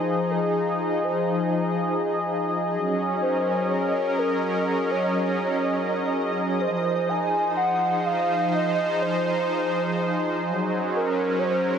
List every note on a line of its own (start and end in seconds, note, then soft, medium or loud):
0.00 2.73 F3 medium
0.00 3.78 D#4 medium
0.00 11.79 G#4 medium
0.00 0.33 C5 loud
0.00 11.79 D#5 medium
0.31 0.79 G#4 loud
0.80 1.05 G#4 loud
1.04 2.01 C5 loud
2.73 6.60 F#3 medium
2.79 6.60 C#4 medium
3.18 7.36 A#4 medium
3.18 3.71 C5 loud
3.70 4.20 C#5 loud
4.18 4.66 A#4 loud
4.67 4.92 A#4 loud
4.91 5.88 C#5 loud
6.60 10.47 F3 medium
6.60 7.10 C5 loud
6.79 11.79 D#4 medium
7.09 7.56 G#5 loud
7.16 11.79 C5 medium
7.57 8.07 F#5 loud
8.06 8.55 F5 loud
8.54 9.02 D#5 loud
9.02 10.19 C5 medium
10.47 11.79 F#3 loud
10.74 11.79 C#4 medium
10.96 11.40 A#4 loud
11.34 11.79 A#4 medium
11.39 11.45 C#5 medium
11.44 11.79 C5 loud